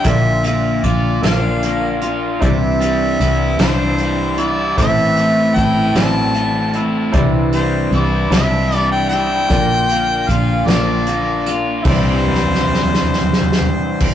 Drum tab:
CC |------------------------|------------------------|------------------------|------------------------|
HH |x---x---x---x---x---x---|x---x---x---x---x---x---|x---x---x---x---x---x---|x---x---x---x---x---x---|
SD |------------o-----------|------------o-----------|------------o-----------|------------o-----------|
FT |------------------------|------------------------|------------------------|------------------------|
BD |o-------o---------------|o-----------------------|o-------o---------------|o-----------------------|

CC |------------------------|x---------------------x-|
HH |x---x---x---x---x---x---|------------------------|
SD |------------o-----------|-----o-o-o-o-o-o-o------|
FT |------------------------|----o-o-o-o-o-o-o-o-----|
BD |o-------o---------------|o---------------------o-|